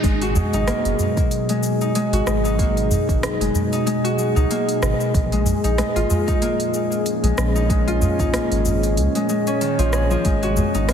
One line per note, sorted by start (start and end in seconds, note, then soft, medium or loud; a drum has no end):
0.00 0.42 G#1 loud
0.00 5.14 B2 medium
0.00 10.93 G#3 medium
0.00 0.35 G#3 loud
0.00 0.67 A#3 medium
0.00 1.45 C#4 medium
0.00 0.54 D#4 medium
0.00 0.19 F4 medium
0.00 10.93 G#4 medium
0.00 kick loud
0.00 open hi-hat medium
0.00 cabasa soft
0.13 5.14 F#3 medium
0.21 2.13 F#4 loud
0.21 open hi-hat soft
0.35 1.48 G#3 medium
0.35 udu loud
0.35 cabasa medium
0.53 0.71 G#1 medium
0.53 1.81 D#4 loud
0.53 open hi-hat soft
0.53 cabasa soft
0.68 2.58 A#3 medium
0.68 cross-stick medium
0.68 open hi-hat medium
0.68 cabasa soft
0.85 0.94 F#1 medium
0.85 open hi-hat soft
0.99 udu medium
0.99 cabasa medium
1.17 kick loud
1.17 open hi-hat soft
1.17 cabasa soft
1.31 6.89 D#4 medium
1.31 open hi-hat medium
1.31 cabasa soft
1.49 1.94 G#3 medium
1.49 open hi-hat soft
1.63 cabasa medium
1.81 2.45 D#4 medium
1.81 cabasa soft
1.95 2.26 G#3 loud
1.95 open hi-hat medium
1.95 cabasa soft
2.13 2.21 G#1 medium
2.13 4.04 F#4 medium
2.13 open hi-hat soft
2.27 2.97 G#1 medium
2.27 3.39 G#3 medium
2.27 cross-stick medium
2.27 cabasa medium
2.45 3.72 D#4 loud
2.45 cabasa soft
2.59 4.50 A#3 medium
2.59 kick loud
2.59 open hi-hat medium
2.59 cabasa soft
2.77 open hi-hat soft
2.91 udu medium
2.91 cabasa medium
3.09 3.27 G#1 medium
3.09 kick loud
3.09 open hi-hat soft
3.09 cabasa soft
3.23 cross-stick medium
3.23 open hi-hat medium
3.23 cabasa soft
3.41 3.49 F#1 medium
3.41 3.85 G#3 medium
3.41 open hi-hat soft
3.54 udu medium
3.54 cabasa medium
3.73 4.36 D#4 medium
3.73 open hi-hat soft
3.73 cabasa soft
3.86 4.17 G#3 loud
3.86 open hi-hat medium
3.86 cabasa soft
4.04 6.02 F#4 loud
4.04 open hi-hat soft
4.19 5.19 G#3 medium
4.19 cabasa medium
4.36 4.45 C#2 loud
4.36 5.64 D#4 loud
4.36 cabasa soft
4.51 6.41 A#3 medium
4.51 open hi-hat medium
4.51 cabasa soft
4.69 open hi-hat soft
4.82 4.93 G#1 medium
4.82 cross-stick medium
4.82 cabasa medium
5.01 cabasa soft
5.14 5.53 A#1 loud
5.14 10.25 A#2 medium
5.14 kick loud
5.14 open hi-hat medium
5.14 cabasa soft
5.32 5.77 G#3 medium
5.32 open hi-hat soft
5.46 udu loud
5.46 cabasa medium
5.64 5.82 A#1 medium
5.64 6.27 D#4 medium
5.64 open hi-hat soft
5.64 cabasa soft
5.73 10.25 F3 medium
5.78 6.09 G#3 loud
5.78 cross-stick medium
5.78 open hi-hat medium
5.78 cabasa soft
5.96 6.04 G#1 medium
5.96 7.87 F4 loud
5.96 open hi-hat soft
6.10 7.22 G#3 medium
6.10 udu medium
6.10 cabasa medium
6.28 7.55 D#4 loud
6.28 kick loud
6.28 open hi-hat soft
6.28 cabasa soft
6.42 8.33 A#3 medium
6.42 open hi-hat medium
6.42 cabasa soft
6.60 open hi-hat soft
6.74 10.93 C#4 medium
6.74 cabasa medium
6.92 cabasa soft
7.06 open hi-hat medium
7.06 cabasa soft
7.23 7.32 A#1 medium
7.23 7.68 G#3 medium
7.23 open hi-hat soft
7.38 8.08 A#1 medium
7.38 cross-stick medium
7.38 cabasa medium
7.55 8.19 D#4 medium
7.55 cabasa soft
7.70 8.01 G#3 loud
7.70 kick loud
7.70 open hi-hat medium
7.70 cabasa soft
7.87 10.40 F4 loud
7.87 open hi-hat soft
8.02 9.14 G#3 medium
8.02 udu medium
8.02 cabasa medium
8.19 8.37 A#1 medium
8.19 10.74 D#4 medium
8.19 kick loud
8.19 open hi-hat soft
8.19 cabasa soft
8.33 10.88 A#3 medium
8.33 cross-stick medium
8.33 open hi-hat medium
8.33 cabasa soft
8.51 8.99 G#1 medium
8.51 open hi-hat soft
8.65 udu medium
8.65 cabasa medium
8.83 open hi-hat soft
8.83 cabasa soft
8.97 9.08 C#2 medium
8.97 open hi-hat medium
8.97 cabasa soft
9.15 9.28 G#3 medium
9.15 open hi-hat soft
9.29 9.66 G#3 medium
9.29 cabasa medium
9.47 10.93 C#4 loud
9.47 open hi-hat soft
9.47 cabasa soft
9.61 10.30 D#3 medium
9.61 open hi-hat medium
9.61 cabasa soft
9.79 10.16 A#1 medium
9.79 10.10 F3 loud
9.79 open hi-hat soft
9.93 10.93 G#4 medium
9.93 cross-stick medium
9.93 cabasa medium
10.11 10.30 F3 medium
10.11 cabasa soft
10.24 10.63 G#1 loud
10.24 10.93 B2 medium
10.24 10.55 G#3 loud
10.24 kick loud
10.24 open hi-hat medium
10.24 cabasa soft
10.43 10.93 F#4 loud
10.43 open hi-hat soft
10.57 10.93 G#3 medium
10.57 udu loud
10.57 cabasa medium
10.64 10.93 F#3 medium
10.75 10.92 G#1 medium
10.75 10.93 D#4 medium
10.75 open hi-hat soft
10.75 cabasa soft
10.89 10.93 A#3 medium
10.89 cross-stick medium
10.89 open hi-hat medium
10.89 cabasa soft